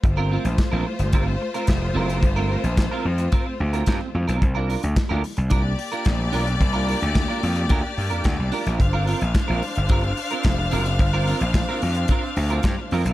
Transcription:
<<
  \new Staff \with { instrumentName = "String section" } { \time 4/4 \key g \minor \tempo 4 = 110 <a f' c''>1~ | <a f' c''>1 | r2 <bes g' d''>2~ | <bes g' d''>1 |
<d' c'' f''>1~ | <d' c'' f''>1 | }
  \new Staff \with { instrumentName = "Clean electric guitar" } { \time 4/4 \key g \minor r16 <c' f' bes'>16 <c' f' bes'>16 r8 <c' f' bes'>8 r16 <c' f' bes'>8 r16 <c' f' bes'>16 r8 <c' f' bes'>16 <c' f' bes'>16 | r16 <c' f' bes'>16 <c' f' bes'>16 r8 <c' f' bes'>8 r16 <c' f' bes'>8 r16 <c' f' bes'>16 <c' f' bes'>8 r16 <c' f' bes'>16 | r16 <d' f' bes'>16 <d' f' bes'>16 r8 <d' f' bes'>8 r16 <d' f' bes'>8 r16 <d' f' bes'>16 r8 <d' f' bes'>8 | r16 <d' f' bes'>16 <d' f' bes'>16 r8 <d' f' bes'>8 r16 <d' f' bes'>8 r16 <d' f' bes'>16 r8 <d' f' bes'>16 <d' f' bes'>16 |
r16 <c' f' bes'>16 <c' f' bes'>16 r8 <c' f' bes'>8 r16 <c' f' bes'>8 r16 <c' f' bes'>16 r8 <c' f' bes'>8 | r16 <c' f' bes'>16 <c' f' bes'>16 r8 <c' f' bes'>8 r16 <c' f' bes'>8 r16 <c' f' bes'>16 r8 <c' f' bes'>16 <c' f' bes'>16 | }
  \new Staff \with { instrumentName = "Slap bass" } { \clef bass \time 4/4 \key g \minor g,,8. bes,,16 r16 bes,,16 r16 g,,16 g,,8 r8 f,,8 fis,,8 | g,,8. bes,,8 r16 f,8 r8 d,8 g,16 r16 f,16 b,,16 | c,8. d,16 r16 d,16 r16 c,16 c,8 r8 bes,,8 b,,8 | c,8. d,8 r16 f,8 d,16 r16 g,16 f,16 d,16 c,16 r16 bes,,16 |
g,,8. bes,,16 r16 bes,,16 r16 g,,16 g,,8 r8 f,,8 fis,,8 | g,,8. bes,,8 r16 f,8 r8 d,8 g,16 r16 f,16 b,,16 | }
  \new DrumStaff \with { instrumentName = "Drums" } \drummode { \time 4/4 <hh bd>8. hh16 <hc hh bd sn>8. hh16 <hh bd>8. hh16 <hc hh bd sn>8. hh16 | <hh bd>8. hh16 <hc hh bd sn>8. hh16 <hh bd>8. hh16 <hc hh bd sn>8. hh16 | <hh bd>8 hho16 hh16 <hc hh bd sn>8 hho16 hh16 <hh bd>8 hho16 hh16 <hc hh bd sn>8 hho16 hh16 | <hh bd>8 hho16 hh16 <hc hh bd sn>8 hho16 hh16 <hh bd>8 hho16 hh16 <hc hh bd sn>8 hho16 hh16 |
<hh bd>8 hho16 hh16 <hc hh bd sn>8 hho16 hh16 <hh bd>8 hho16 hh16 <hc hh bd sn>8 hho16 hh16 | <hh bd>8 hho16 hh16 <hc hh bd sn>8 hho16 hh16 <hh bd>8 hho16 hh16 <hc hh bd sn>8 hho16 hh16 | }
>>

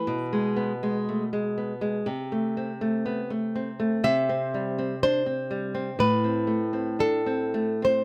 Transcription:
<<
  \new Staff \with { instrumentName = "Nylon-string guitar" } { \time 4/4 \key a \dorian \tempo 4 = 60 b'2~ b'8 r4. | e''4 c''4 b'4 a'8. c''16 | }
  \new Staff \with { instrumentName = "Nylon-string guitar" } { \time 4/4 \key a \dorian ces16 aes16 ces'16 aes16 a16 aes16 ces'16 aes16 c16 a16 c'16 a16 b16 a16 c'16 a16 | c16 c'16 g16 c'16 d'16 c'16 g16 c'16 a,16 c'16 a16 c'16 d'16 c'16 a16 c'16 | }
>>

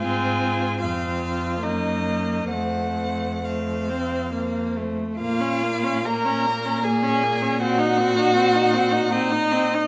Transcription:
<<
  \new Staff \with { instrumentName = "Violin" } { \time 3/4 \key bes \minor \tempo 4 = 74 aes''4 f''4 ees''4 | ges''4 f''4. r8 | f''4 bes''4 aes''4 | ges''2 ees''4 | }
  \new Staff \with { instrumentName = "Violin" } { \time 3/4 \key bes \minor f'4 f'4 ees'4 | c'4 c'4.~ c'16 r16 | f'4 bes'4 aes'4 | ges'2 ees'4 | }
  \new Staff \with { instrumentName = "Viola" } { \time 3/4 \key bes \minor c'4 c'4 bes4 | a4 a8 c'8 bes8 a8 | bes16 des'16 bes16 des'16 bes16 des'16 bes16 des'16 bes16 des'16 bes16 des'16 | c'16 ees'16 c'16 ees'16 c'16 ees'16 c'16 ees'16 c'16 ees'16 c'16 ees'16 | }
  \new Staff \with { instrumentName = "Cello" } { \clef bass \time 3/4 \key bes \minor aes,4 f,4 ges,4 | f,2~ f,8. r16 | bes,2.~ | bes,2. | }
>>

